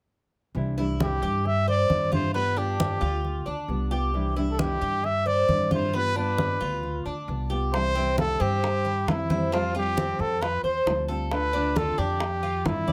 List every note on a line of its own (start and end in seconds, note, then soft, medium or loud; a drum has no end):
0.55 1.18 C2 medium
0.55 0.77 C3 medium
0.55 0.77 E3 medium
0.55 0.77 G3 medium
0.55 0.77 D4 medium
0.55 0.76 E4 medium
0.55 high conga soft
0.77 0.98 E3 medium
0.77 0.99 G3 medium
0.77 1.00 D4 medium
0.77 0.99 E4 medium
0.77 1.21 E4 medium
0.77 high conga soft
0.99 1.44 E3 soft
0.99 1.44 G3 soft
0.99 1.45 D4 soft
0.99 1.44 E4 soft
0.99 1.48 G4 medium
0.99 high conga medium
1.22 1.86 G2 medium
1.22 1.66 G4 medium
1.22 high conga soft
1.45 1.68 E5 medium
1.45 muted nylon-string guitar stroke medium
1.45 high conga soft
1.68 2.11 C5 medium
1.68 2.10 D5 loud
1.68 high conga soft
1.89 2.96 G2 medium
1.89 2.11 E3 soft
1.89 2.12 G3 soft
1.89 2.11 D4 medium
1.89 2.11 E4 soft
1.89 high conga medium
2.12 2.35 E3 medium
2.12 2.33 G3 medium
2.12 2.34 D4 medium
2.12 2.34 E4 medium
2.12 2.34 F4 medium
2.12 2.34 C5 medium
2.12 high conga medium
2.34 2.56 G3 medium
2.34 2.56 B3 medium
2.34 2.57 B3 medium
2.34 2.55 F4 medium
2.34 2.60 B4 loud
2.34 high conga soft
2.56 2.79 B3 soft
2.56 3.00 D4 medium
2.56 2.79 F4 medium
2.56 3.47 G4 medium
2.56 high conga soft
2.79 3.23 G3 soft
2.79 3.23 B3 soft
2.79 3.23 F4 soft
2.79 high conga medium
3.01 3.43 D2 medium
3.01 3.45 F4 medium
3.01 high conga soft
3.24 muted nylon-string guitar stroke medium
3.24 high conga soft
3.46 3.67 D2 medium
3.46 3.90 D4 medium
3.46 high conga soft
3.68 4.75 C2 medium
3.68 3.91 G3 soft
3.68 3.91 B3 medium
3.68 3.90 F4 medium
3.68 high conga soft
3.91 4.14 B3 medium
3.91 4.13 F4 medium
3.91 4.35 G4 medium
4.13 4.35 C3 medium
4.13 4.35 E3 medium
4.13 4.36 G3 medium
4.13 4.36 D4 medium
4.13 4.35 E4 medium
4.13 high conga soft
4.36 4.58 E3 medium
4.36 4.59 G3 medium
4.36 4.58 D4 medium
4.36 4.58 E4 medium
4.36 4.80 E4 medium
4.36 high conga soft
4.51 4.61 A4 medium
4.59 5.03 E3 soft
4.59 5.04 G3 soft
4.59 5.04 D4 soft
4.59 5.04 E4 soft
4.59 5.07 G4 medium
4.59 high conga medium
4.81 5.45 G2 medium
4.81 5.25 G4 medium
4.81 high conga soft
5.04 5.28 E5 loud
5.04 muted nylon-string guitar stroke medium
5.04 high conga soft
5.26 5.70 C5 medium
5.26 5.71 D5 loud
5.26 high conga soft
5.48 6.54 G2 medium
5.48 5.70 E3 soft
5.48 5.71 G3 soft
5.48 5.71 D4 soft
5.48 5.70 E4 medium
5.48 high conga medium
5.71 5.94 E3 medium
5.71 5.93 G3 medium
5.71 5.93 D4 medium
5.71 5.93 E4 medium
5.71 5.93 F4 medium
5.71 5.97 C5 medium
5.71 high conga medium
5.93 6.15 G3 medium
5.93 6.15 B3 medium
5.93 6.16 B3 medium
5.93 6.15 F4 medium
5.93 6.17 B4 loud
5.93 high conga soft
6.16 6.38 B3 medium
6.16 6.59 D4 medium
6.16 6.37 F4 medium
6.16 7.02 B4 medium
6.16 high conga soft
6.38 6.82 G3 soft
6.38 6.83 B3 soft
6.38 high conga medium
6.61 7.02 D2 medium
6.61 7.04 F4 medium
6.61 high conga soft
6.83 muted nylon-string guitar stroke medium
6.83 high conga soft
7.05 7.26 D2 medium
7.05 7.49 D4 medium
7.05 high conga soft
7.28 8.34 C2 medium
7.28 7.50 G3 soft
7.28 7.50 B3 medium
7.28 7.49 F4 soft
7.28 high conga soft
7.50 7.73 B3 soft
7.50 7.72 F4 medium
7.50 7.72 G4 medium
7.74 7.95 C3 medium
7.74 7.95 E3 medium
7.74 7.95 G3 medium
7.74 7.96 C4 medium
7.74 7.95 E4 medium
7.74 8.15 C5 loud
7.74 high bongo medium
7.74 high conga soft
7.95 8.17 E3 medium
7.95 8.18 G3 medium
7.95 8.17 C4 medium
7.95 8.18 C4 medium
7.95 8.17 E4 medium
7.95 high conga soft
8.17 8.62 E3 soft
8.17 8.62 G3 soft
8.17 8.63 C4 soft
8.17 8.39 E4 medium
8.17 8.63 E4 soft
8.17 8.43 A4 loud
8.17 high bongo medium
8.17 high conga medium
8.40 9.03 G2 medium
8.40 8.83 C4 medium
8.40 9.10 G4 medium
8.40 high conga soft
8.63 muted nylon-string guitar stroke medium
8.63 high bongo medium
8.63 high conga soft
8.85 9.28 E4 medium
8.85 high conga soft
9.07 10.13 F2 medium
9.07 9.29 E3 soft
9.07 9.30 G3 soft
9.07 9.30 C4 medium
9.07 9.55 E4 medium
9.07 9.29 E4 medium
9.07 high bongo medium
9.07 low bongo medium
9.07 high conga medium
9.30 9.52 E3 medium
9.30 9.52 G3 medium
9.30 9.52 C4 medium
9.30 9.51 E4 medium
9.30 9.52 C5 medium
9.30 high conga medium
9.52 9.74 F3 medium
9.52 9.74 G3 medium
9.52 9.74 C4 medium
9.52 9.75 F4 medium
9.52 9.73 F4 medium
9.52 high bongo medium
9.52 high conga soft
9.74 9.97 G3 medium
9.74 9.97 C4 medium
9.74 9.96 F4 medium
9.74 10.22 G4 loud
9.74 high bongo soft
9.74 high conga soft
9.97 10.41 F3 soft
9.97 10.41 G3 soft
9.97 10.40 C4 medium
9.97 10.42 C4 medium
9.97 10.42 F4 soft
9.97 high bongo medium
9.97 high conga medium
10.19 10.61 F2 loud
10.19 10.44 A4 medium
10.19 high bongo soft
10.19 high conga soft
10.41 10.63 F4 medium
10.41 10.63 B4 loud
10.41 muted nylon-string guitar stroke medium
10.41 high bongo medium
10.41 high conga soft
10.63 10.84 E2 medium
10.63 11.06 C5 medium
10.63 11.07 C5 medium
10.63 high bongo soft
10.63 high conga soft
10.86 11.92 D2 medium
10.86 11.08 F3 soft
10.86 11.08 G3 soft
10.86 11.09 C4 soft
10.86 11.08 F4 medium
10.86 high bongo medium
10.86 low bongo medium
10.86 high conga soft
11.08 11.31 G3 soft
11.08 11.31 C4 medium
11.08 11.30 F4 medium
11.08 11.52 A4 medium
11.31 11.53 D3 medium
11.31 11.53 A3 medium
11.31 11.54 D4 medium
11.31 11.53 F4 medium
11.31 11.79 B4 loud
11.31 high bongo medium
11.31 high conga soft
11.53 11.76 A3 medium
11.53 11.75 D4 medium
11.53 11.76 D4 medium
11.53 11.75 F4 medium
11.53 high conga soft
11.76 12.20 D3 soft
11.76 12.20 A3 soft
11.76 12.20 D4 soft
11.76 11.98 F4 medium
11.76 12.21 F4 medium
11.76 12.00 A4 medium
11.76 high bongo medium
11.76 high conga medium
11.98 12.61 F2 loud
11.98 12.42 D4 medium
11.98 12.68 G4 medium
11.98 high conga soft
12.20 muted nylon-string guitar stroke medium
12.20 high bongo medium
12.20 high conga soft
12.43 12.86 F4 medium
12.43 high conga soft
12.65 12.92 G2 medium
12.65 12.87 D3 soft
12.65 12.88 A3 soft
12.65 12.88 D4 soft
12.65 12.92 E4 medium
12.65 12.87 F4 medium
12.65 high bongo medium
12.65 low bongo medium
12.65 high conga medium
12.88 12.92 D4 medium
12.88 12.92 F4 medium
12.88 12.92 D5 medium
12.88 high conga medium